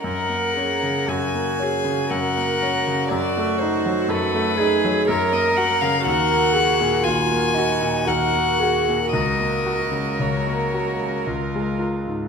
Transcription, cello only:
X:1
M:3/4
L:1/8
Q:1/4=59
K:F#
V:1 name="Cello"
A2 F G A2 | F2 =A G ^A2 | F2 E D F2 | A4- A z |]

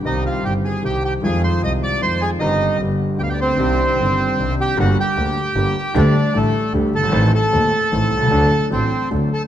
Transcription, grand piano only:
X:1
M:3/4
L:1/16
Q:1/4=152
K:Cm
V:1 name="Grand piano" clef=bass
[C,,C,E,G,CG]4 [G,,,G,,E,G,CG]4 [C,,C,E,G,CG]4 | [F,,E,F,A,CF]4 [C,,C,E,A,C]4 [F,,E,F,A,CF]4 | [G,,,G,,E,G,CG]4 [G,,,G,,D,G,=B,G]4 [D,,D,G,B,G]4 | [C,,C,E,CDG]4 [G,,,G,,E,CDG]4 [C,,C,E,CDG]4 |
[K:Gm] [G,,,G,,D,G,B,G]2 z2 [D,,D,G,B,G]2 z2 [G,,,G,,D,G,B,G]2 z2 | [D,,D,G,A,G]2 z2 [A,,,A,,D,G,A,G]2 z2 [D,,D,G,A,G]2 z/2 ^F,,,/2 G,,,/2 _A,,,/2 | [A,,,A,,E,A,CA]2 z2 [E,,,E,,E,A,CA]2 z2 [A,,,A,,E,A,CA]2 z/2 =B,,,/2 C,,/2 ^C,,/2 | [D,,D,^F,A,DA]2 z2 [A,,,A,,F,A,DA]2 z2 [D,,D,F,A,DA]2 z2 |]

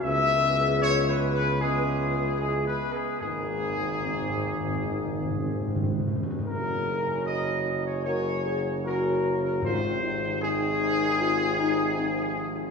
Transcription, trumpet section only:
X:1
M:4/4
L:1/16
Q:1/4=76
K:Abmix
V:1 name="Trumpet section"
=e4 (3d2 =B2 B2 ^G4 (3G2 B2 G2 | A12 z4 | B4 e3 d d4 B3 B | c4 A12 |]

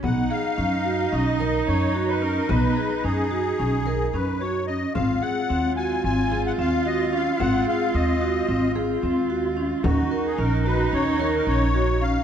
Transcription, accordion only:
X:1
M:9/8
L:1/16
Q:3/8=73
K:Cblyd
V:1 name="Accordion"
^f2 =f6 ^d4 ^c3 =B _B2 | =B4 ^G8 B2 ^c2 ^d2 | f2 g4 a2 a3 g f2 e2 f2 | g2 f2 e6 z8 |
G3 A B2 c2 d3 B d4 f2 |]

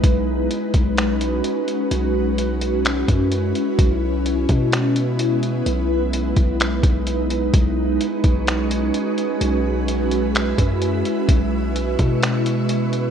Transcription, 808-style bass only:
X:1
M:4/4
L:1/8
Q:1/4=128
K:B
V:1 name="808-style bass" clef=bass
B,,,2 z B,,,3 z2 | B,,,4- B,,, F,,2 z | B,,,3 B,,4- B,, | B,,,3 B,,,2 B,,,3 |
B,,,2 z B,,,3 z2 | B,,,4- B,,, F,,2 z | B,,,3 B,,4- B,, |]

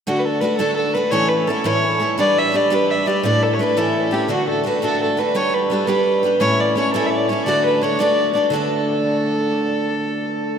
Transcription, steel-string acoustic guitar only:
X:1
M:6/8
L:1/8
Q:3/8=113
K:D
V:1 name="Steel-string acoustic guitar"
[D,A,DFA]2 [A,DFA] [D,A,DFA]2 [A,DFA] | [A,,E,A,CEA]2 [A,CEA] [A,,E,A,CEA]2 [A,CEA] | [G,DGB]2 [G,DGB] [G,DGB]2 [G,DGB] | [A,,D,A,DEA]2 [A,DEA] [A,,E,A,CEA]2 [A,CEA] |
[D,A,DFA]2 [A,DFA] [D,A,DFA]2 [A,DFA] | [G,DGB]2 [G,DGB] [G,DGB]2 [G,DGB] | [A,,E,A,CEA]2 [A,CEA] [A,,E,A,CEA]2 [A,CEA] | [D,A,DFA]2 [A,DFA] [D,A,DFA]2 [A,DFA] |
[D,A,DFA]6- | [D,A,DFA]6 |]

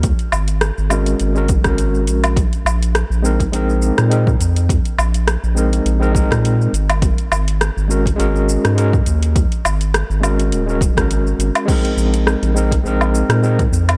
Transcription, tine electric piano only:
X:1
M:4/4
L:1/16
Q:"Swing 16ths" 1/4=103
K:Bbm
V:1 name="Tine electric piano"
z6 [A,DGB]3 [A,DGB] z [A,DGB]4- [A,DGB] | z6 [A,CEB] z [A,CEB]4 [A,CEB] z3 | z6 [A,CEB]3 [A,CEB] [A,CEB]4 z2 | z6 [A,DGB] z [A,DGB]4 [A,DGB] z3 |
z6 [A,DGB]3 [A,DGB] z [A,DGB]4- [A,DGB] | [A,CEB]6 [A,CEB] z [A,CEB]4 [A,CEB] z3 |]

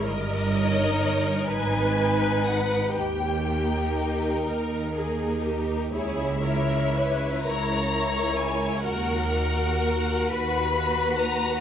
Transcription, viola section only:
X:1
M:6/8
L:1/8
Q:3/8=41
K:D#phr
V:1 name="Viola section"
A3 B3 | =G3 A ^G =G | G A B c3 | A3 B3 |]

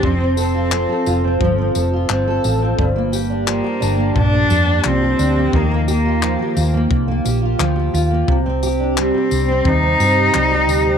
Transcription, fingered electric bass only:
X:1
M:4/4
L:1/16
Q:1/4=87
K:Eblyd
V:1 name="Fingered electric bass" clef=bass
F,,,4- F,,, z F,,,2 G,,,2 F,,,2 G,,,2 A,,,2 | G,,,4- G,,, z G,,,2 B,,,2 F,,2 C,,2 D,,2 | E,,4- E,, z E,,2 C,,2 B,,,2 D,,2 E,,2 | C,,4- C,, z C,,2 E,,2 G,,2 C,,2 D,,2 |]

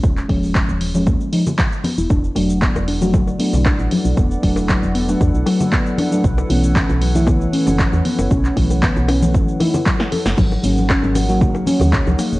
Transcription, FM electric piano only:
X:1
M:4/4
L:1/16
Q:"Swing 16ths" 1/4=116
K:Elyd
V:1 name="FM electric piano"
[^E,G,C]2 [E,G,C]4- [E,G,C] [E,G,C]3 [E,G,D] z4 z | z2 [F,=A,=D]4- [F,A,D] [F,A,F]3 [F,A,D]6- | [F,=A,=D]2 [F,A,D]4- [F,A,D] [F,A,D]3 [F,A,F]4- [F,A,F] [F,A,D] | z2 [E,=A,C]4- [E,A,C] [E,A,E]3 [E,A,C]6- |
[E,=A,C]2 [E,A,C]4- [E,A,C] [E,A,C]3 [E,A,D] z4 z | z2 [F,A,C]4- [F,A,C] [F,A,F]3 [F,A,C]6 |]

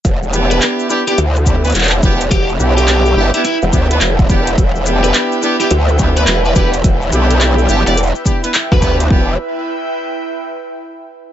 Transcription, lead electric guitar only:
X:1
M:4/4
L:1/16
Q:"Swing 16ths" 1/4=106
K:Em
V:1 name="Lead electric guitar"
z3 B z3 G z8 | G z2 G3 z E E z6 z | z3 B z3 G z3 B B B B z | z6 z d z4 z B B z |
z16 |]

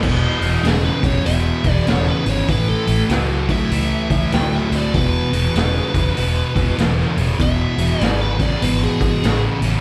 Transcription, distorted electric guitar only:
X:1
M:4/4
L:1/8
Q:"Swing" 1/4=98
K:Emix
V:1 name="Distorted electric guitar" clef=bass
[E,,B,,] [E,,B,,] [E,,C,] [E,,C,] [E,,B,,] [E,,B,,] [E,,C,] [E,,C,] | [A,,E,] [A,,E,] [A,,F,] [A,,F,] [A,,E,] [A,,E,] [A,,F,] [A,,F,] | [E,,B,,] [E,,B,,] [E,,C,] [E,,C,] [E,,B,,] [E,,B,,] [E,,C,] [E,,C,] | [E,,B,,] [E,,B,,] [E,,C,] [E,,C,] [E,,B,,] [E,,B,,] [E,,C,] [E,,C,] |]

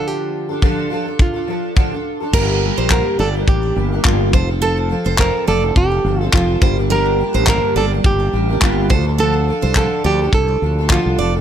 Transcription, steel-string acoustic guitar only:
X:1
M:4/4
L:1/16
Q:"Swing 16ths" 1/4=105
K:Gm
V:1 name="Steel-string acoustic guitar"
z16 | B z2 c2 z d z6 z c z | A z2 c2 z d z6 z c z | B z2 c2 z d z6 z c z |
A z2 c2 z d z6 z d z |]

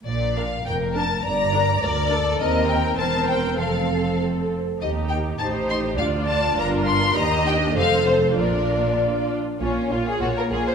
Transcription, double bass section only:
X:1
M:2/4
L:1/8
Q:1/4=101
K:Bb
V:1 name="Double bass section" clef=bass
B,,,2 F,,,2 | G,,,2 D,,2 | E,,2 =E,,,2 | F,,,3 z |
E,,2 A,,,2 | D,,2 G,,,2 | E,,2 F,,,2 | B,,,3 z |
[K:Bbm] B,,, B,,, B,,, B,,, |]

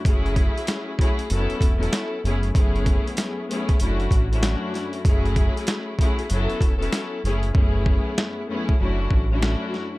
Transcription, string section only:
X:1
M:4/4
L:1/16
Q:"Swing 16ths" 1/4=96
K:F#m
V:1 name="String section"
[F,A,CEG]6 [F,A,CEG]2 [F,B,CEA]3 [F,B,CEA]3 [F,,A,B,CEG] z | [F,,A,B,CEG]6 [F,,A,B,CEG]2 [F,,A,CDEF]3 [F,,A,CDEF]4- [F,,A,CDEF] | [F,A,CEG]6 [F,A,CEG]2 [F,B,CEA]3 [F,B,CEA]3 [F,,A,B,CEG] z | [F,,A,B,CEG]6 [F,,A,B,CEG]2 [F,,A,CDEF]3 [F,,A,CDEF]4- [F,,A,CDEF] |]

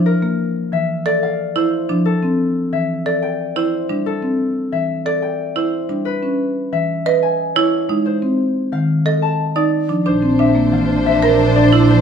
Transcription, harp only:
X:1
M:6/4
L:1/8
Q:1/4=180
K:Bblyd
V:1 name="Harp"
[Bcdefa]4 e2 d f2 c3 | A4 e2 d g2 c3 | A4 e2 d g2 c3 | =B4 e2 ^d ^g2 ^c3 |
c4 f2 _e a2 d3 | c2 e2 f2 e b2 d2 c |]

